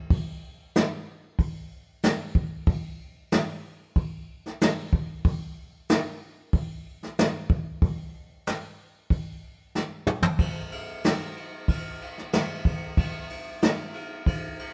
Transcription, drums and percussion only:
0.10 kick loud
0.10 open hi-hat medium
0.75 snare loud
0.75 open hi-hat medium
1.39 kick medium
1.39 open hi-hat medium
2.03 snare loud
2.03 open hi-hat medium
2.35 kick medium
2.66 kick loud
2.66 open hi-hat medium
3.31 snare loud
3.31 open hi-hat medium
3.96 kick medium
3.96 open hi-hat medium
4.46 snare soft
4.61 snare loud
4.61 open hi-hat medium
4.93 kick loud
5.25 kick loud
5.25 open hi-hat medium
5.89 snare loud
5.89 open hi-hat medium
6.53 kick loud
6.53 open hi-hat medium
7.03 snare soft
7.18 snare loud
7.18 open hi-hat medium
7.50 kick loud
7.82 kick loud
7.82 open hi-hat medium
8.46 snare loud
8.46 open hi-hat medium
9.10 kick medium
9.10 open hi-hat medium
9.75 snare medium
10.07 mid tom loud
10.23 floor tom loud
10.39 kick loud
10.39 ride medium
10.72 ride medium
11.04 snare medium
11.04 ride medium
11.36 ride medium
11.68 kick medium
11.68 ride medium
12.01 ride medium
12.18 snare soft
12.32 snare loud
12.32 ride medium
12.65 kick medium
12.65 ride medium
12.97 kick loud
12.97 ride medium
13.30 ride medium
13.62 snare loud
13.62 ride medium
13.94 ride medium
14.26 kick medium
14.26 ride medium
14.59 ride medium

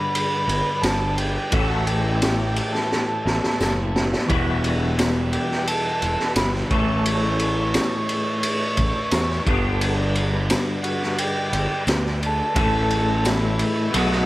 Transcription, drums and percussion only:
0.15 ride loud
0.49 ride medium
0.83 snare loud
0.83 ride medium
0.83 tambourine medium
1.18 ride medium
1.52 kick loud
1.52 ride loud
1.87 ride medium
2.22 snare loud
2.22 ride loud
2.22 tambourine medium
2.56 ride medium
2.75 snare soft
2.92 snare medium
3.27 snare medium
3.44 snare medium
3.60 snare medium
3.60 tambourine medium
3.96 snare loud
4.13 snare medium
4.29 kick loud
4.29 ride medium
4.64 ride medium
4.99 snare loud
4.99 ride medium
4.99 tambourine medium
5.33 ride medium
5.51 snare soft
5.67 ride medium
6.02 ride medium
6.20 snare soft
6.36 snare loud
6.36 ride medium
6.36 tambourine medium
6.55 snare soft
6.71 kick loud
6.71 ride medium
7.05 ride medium
7.39 ride medium
7.74 snare loud
7.74 ride medium
7.74 tambourine medium
8.09 ride medium
8.43 ride loud
8.77 kick medium
8.77 ride medium
9.11 snare loud
9.11 ride medium
9.11 tambourine medium
9.30 snare soft
9.47 kick loud
9.47 ride medium
9.81 ride medium
10.15 ride medium
10.50 snare loud
10.50 ride medium
10.50 tambourine medium
10.84 ride medium
11.03 snare soft
11.18 ride medium
11.53 ride medium
11.87 snare loud
11.87 ride medium
11.87 tambourine medium
12.06 snare soft
12.23 ride medium
12.56 kick loud
12.56 ride loud
12.90 ride medium
13.25 snare loud
13.25 ride medium
13.25 tambourine medium
13.59 ride medium
13.94 ride loud
14.12 snare soft

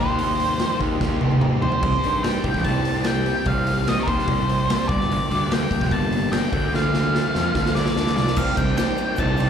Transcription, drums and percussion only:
0.19 open hi-hat medium
0.40 open hi-hat medium
0.59 snare loud
0.59 open hi-hat medium
0.80 kick medium
0.80 open hi-hat soft
1.01 kick medium
1.01 snare medium
1.21 high tom medium
1.31 high tom medium
1.41 mid tom medium
1.62 floor tom medium
1.72 floor tom medium
1.83 kick loud
1.83 crash loud
2.04 open hi-hat medium
2.24 snare loud
2.24 open hi-hat medium
2.44 kick medium
2.44 open hi-hat soft
2.54 kick medium
2.54 snare soft
2.64 kick medium
2.64 open hi-hat medium
2.85 open hi-hat medium
3.04 snare loud
3.04 open hi-hat medium
3.26 open hi-hat medium
3.46 kick medium
3.46 open hi-hat medium
3.67 open hi-hat medium
3.87 snare medium
3.87 open hi-hat medium
4.08 kick medium
4.08 open hi-hat medium
4.19 snare soft
4.28 kick loud
4.28 open hi-hat medium
4.49 open hi-hat medium
4.70 snare loud
4.70 open hi-hat medium
4.89 kick loud
4.89 open hi-hat medium
5.01 snare soft
5.11 open hi-hat medium
5.31 open hi-hat medium
5.51 snare loud
5.51 open hi-hat medium
5.71 kick medium
5.71 open hi-hat medium
5.81 kick medium
5.81 snare soft
5.91 kick medium
5.91 open hi-hat medium
6.12 open hi-hat medium
6.32 snare loud
6.32 open hi-hat medium
6.53 kick loud
6.53 open hi-hat medium
6.74 snare medium
6.94 snare medium
7.15 snare medium
7.35 snare medium
7.55 kick loud
7.55 snare medium
7.66 snare medium
7.76 snare medium
7.86 snare medium
7.96 snare medium
8.07 snare medium
8.17 snare medium
8.27 snare medium
8.36 kick loud
8.36 crash loud
8.36 shaker medium
8.57 kick medium
8.57 ride medium
8.57 shaker medium
8.77 snare loud
8.77 ride loud
8.77 shaker medium
8.87 shaker soft
8.97 ride medium
8.97 shaker medium
9.16 kick loud
9.16 ride loud
9.16 shaker medium
9.27 shaker soft
9.37 ride medium
9.37 shaker medium

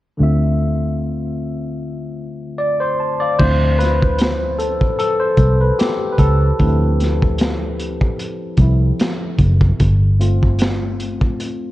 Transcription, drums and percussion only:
3.39 kick loud
3.39 crash medium
3.80 snare soft
3.80 closed hi-hat medium
4.02 kick medium
4.18 snare loud
4.18 closed hi-hat medium
4.60 closed hi-hat medium
4.81 kick medium
5.00 closed hi-hat medium
5.37 kick medium
5.37 closed hi-hat medium
5.79 snare loud
5.79 closed hi-hat medium
6.18 kick medium
6.18 closed hi-hat medium
6.59 kick loud
6.59 closed hi-hat medium
7.00 snare soft
7.00 closed hi-hat medium
7.22 kick medium
7.38 snare loud
7.38 closed hi-hat medium
7.80 closed hi-hat medium
8.01 kick medium
8.19 closed hi-hat medium
8.57 kick medium
8.57 closed hi-hat medium
8.99 snare loud
8.99 closed hi-hat medium
9.38 kick medium
9.38 closed hi-hat medium
9.61 kick medium
9.79 kick loud
9.79 closed hi-hat medium
10.21 closed hi-hat medium
10.43 kick medium
10.59 snare loud
10.59 closed hi-hat medium
11.00 closed hi-hat medium
11.21 kick medium
11.40 closed hi-hat medium

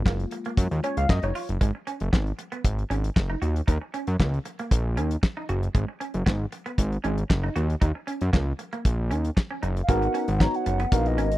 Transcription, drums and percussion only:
0.06 kick loud
0.06 snare loud
0.06 clap medium
0.20 closed hi-hat soft
0.31 closed hi-hat medium
0.45 closed hi-hat soft
0.57 kick loud
0.57 closed hi-hat loud
0.71 closed hi-hat soft
0.84 closed hi-hat medium
0.97 closed hi-hat medium
1.09 kick loud
1.09 snare loud
1.09 clap medium
1.23 closed hi-hat soft
1.35 open hi-hat medium
1.49 closed hi-hat medium
1.61 kick loud
1.61 closed hi-hat medium
1.87 closed hi-hat medium
2.00 closed hi-hat soft
2.13 kick medium
2.13 snare medium
2.13 clap medium
2.27 closed hi-hat soft
2.39 closed hi-hat medium
2.52 closed hi-hat soft
2.64 kick loud
2.64 closed hi-hat loud
2.79 closed hi-hat soft
2.91 closed hi-hat medium
3.04 closed hi-hat medium
3.16 kick loud
3.16 snare loud
3.16 clap medium
3.42 closed hi-hat medium
3.56 closed hi-hat soft
3.68 kick medium
3.68 closed hi-hat medium
3.94 closed hi-hat medium
4.07 closed hi-hat soft
4.20 kick medium
4.20 snare loud
4.20 clap medium
4.34 closed hi-hat soft
4.45 closed hi-hat medium
4.59 closed hi-hat soft
4.71 kick loud
4.71 closed hi-hat loud
4.97 closed hi-hat medium
5.11 closed hi-hat medium
5.23 kick loud
5.23 snare loud
5.23 clap medium
5.49 closed hi-hat medium
5.63 closed hi-hat soft
5.75 kick loud
5.75 closed hi-hat medium
6.01 closed hi-hat medium
6.14 closed hi-hat soft
6.26 kick medium
6.26 snare medium
6.26 clap medium
6.52 closed hi-hat medium
6.66 closed hi-hat soft
6.78 kick loud
6.78 closed hi-hat loud
6.92 closed hi-hat soft
7.04 closed hi-hat medium
7.18 closed hi-hat medium
7.30 kick loud
7.30 snare medium
7.30 clap medium
7.56 closed hi-hat medium
7.70 closed hi-hat soft
7.82 kick loud
7.82 closed hi-hat medium
8.08 closed hi-hat medium
8.21 closed hi-hat soft
8.33 kick medium
8.33 snare medium
8.33 clap medium
8.59 closed hi-hat medium
8.73 closed hi-hat soft
8.85 kick loud
8.85 closed hi-hat loud
9.11 closed hi-hat medium
9.25 closed hi-hat medium
9.37 kick loud
9.37 snare loud
9.37 clap medium
9.63 closed hi-hat medium
9.77 closed hi-hat soft
9.89 kick loud
9.89 closed hi-hat medium
10.02 closed hi-hat soft
10.15 closed hi-hat medium
10.28 closed hi-hat medium
10.40 kick medium
10.40 snare medium
10.40 clap medium
10.54 closed hi-hat soft
10.66 closed hi-hat medium
10.80 closed hi-hat soft
10.92 kick loud
10.92 closed hi-hat loud
11.06 closed hi-hat soft
11.18 closed hi-hat medium
11.32 closed hi-hat medium

